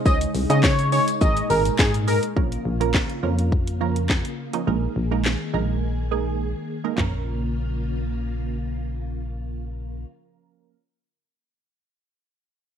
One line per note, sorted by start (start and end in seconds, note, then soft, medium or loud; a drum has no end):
0.00 2.32 G#3 medium
0.00 2.32 D#4 medium
0.05 0.26 C#2 loud
0.05 0.30 D#4 medium
0.05 0.30 G#4 medium
0.05 0.30 C#5 medium
0.05 0.18 D#5 loud
0.05 kick loud
0.05 tambourine medium
0.05 shaker medium
0.21 closed hi-hat medium
0.21 shaker medium
0.34 0.45 C2 loud
0.34 open hi-hat medium
0.34 tambourine soft
0.34 shaker medium
0.50 0.99 C#3 loud
0.50 0.73 D#4 medium
0.50 0.73 G#4 medium
0.50 0.73 C#5 medium
0.50 0.61 D#5 medium
0.50 closed hi-hat medium
0.50 tambourine soft
0.50 shaker medium
0.63 0.86 C#5 medium
0.63 kick loud
0.63 snare loud
0.63 clap loud
0.63 tambourine medium
0.63 shaker medium
0.79 closed hi-hat soft
0.79 shaker soft
0.92 1.20 D#4 medium
0.92 1.20 G#4 medium
0.92 1.04 C#5 medium
0.92 1.21 C#5 medium
0.92 open hi-hat medium
0.92 tambourine medium
0.92 shaker medium
1.08 closed hi-hat medium
1.08 tambourine soft
1.08 shaker medium
1.21 1.41 G#1 loud
1.21 2.35 A#2 medium
1.21 1.44 D#4 medium
1.21 1.45 G#4 medium
1.21 1.45 A#4 medium
1.21 1.44 D#5 medium
1.21 kick loud
1.21 tambourine soft
1.21 shaker medium
1.37 closed hi-hat medium
1.37 shaker medium
1.50 1.70 G#1 loud
1.50 1.82 D#4 medium
1.50 1.82 G#4 medium
1.50 1.62 A#4 medium
1.50 1.82 A#4 medium
1.50 open hi-hat medium
1.50 tambourine medium
1.50 shaker medium
1.65 closed hi-hat medium
1.65 tambourine soft
1.65 shaker medium
1.79 2.19 G#2 loud
1.79 1.91 G#4 medium
1.79 kick loud
1.79 snare medium
1.79 clap loud
1.79 tambourine medium
1.79 shaker medium
1.94 closed hi-hat medium
1.94 shaker medium
2.07 2.24 D#4 medium
2.07 2.24 G#4 medium
2.07 2.20 A#4 medium
2.07 2.24 A#4 medium
2.07 open hi-hat medium
2.07 tambourine medium
2.07 shaker medium
2.23 closed hi-hat medium
2.23 shaker medium
2.36 2.57 A#1 loud
2.36 2.60 F3 medium
2.36 2.60 A#3 medium
2.36 2.61 C#4 medium
2.36 2.61 A#4 loud
2.36 kick loud
2.52 closed hi-hat medium
2.65 3.05 A#1 loud
2.80 3.04 F3 medium
2.80 3.04 A#3 medium
2.80 3.04 C#4 medium
2.80 3.04 A#4 loud
2.80 closed hi-hat medium
2.94 kick loud
2.94 snare medium
2.94 clap loud
3.10 closed hi-hat soft
3.23 4.23 F2 medium
3.23 3.55 F3 medium
3.23 3.55 A#3 medium
3.23 3.55 C#4 medium
3.23 3.55 A#4 loud
3.38 closed hi-hat medium
3.52 kick loud
3.67 closed hi-hat medium
3.80 4.21 F3 medium
3.80 4.21 A#3 medium
3.80 4.21 C#4 medium
3.80 4.21 A#4 loud
3.96 closed hi-hat medium
4.09 kick loud
4.09 snare medium
4.09 clap loud
4.25 closed hi-hat medium
4.53 4.61 F3 medium
4.53 4.61 A#3 medium
4.53 4.61 C#4 medium
4.53 4.61 D#4 loud
4.53 closed hi-hat medium
4.67 4.87 A#1 loud
4.67 6.96 D#3 medium
4.67 4.91 G#3 medium
4.67 4.91 A#3 medium
4.67 4.91 D#4 medium
4.67 6.96 G#4 medium
4.67 4.91 A#4 loud
4.96 5.36 A#1 loud
5.11 5.35 G#3 medium
5.11 5.35 A#3 medium
5.11 5.35 D#4 medium
5.11 5.35 A#4 loud
5.25 snare medium
5.25 clap loud
5.54 6.54 A#1 medium
5.54 5.85 G#3 medium
5.54 5.85 A#3 medium
5.54 5.86 D#4 medium
5.54 5.86 A#4 loud
6.11 6.51 G#3 medium
6.11 6.51 A#3 medium
6.11 6.52 D#4 medium
6.11 6.52 G#4 medium
6.84 6.92 G#3 medium
6.84 6.92 A#3 medium
6.84 6.92 D#4 medium
6.84 6.92 A#4 medium
6.96 10.05 A#1 medium
6.96 10.74 F3 medium
6.96 10.74 A#3 medium
6.96 10.05 A#3 medium
6.96 10.75 C#4 medium
6.96 10.76 A#4 medium
6.96 kick medium
6.96 clap medium
6.96 floor tom loud